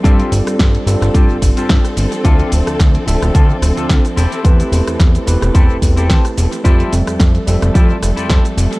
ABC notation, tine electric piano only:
X:1
M:4/4
L:1/8
Q:"Swing 16ths" 1/4=109
K:Am
V:1 name="Tine electric piano"
[G,CDFA]3 [G,CDFA]4- [G,CDFA] | [F,CDAe]3 [F,CDAe]4 z | [A,CEGB]3 [A,CEGB]4- [A,CEGB] | [F,G,CAe]3 [F,G,CAe]4- [F,G,CAe] |]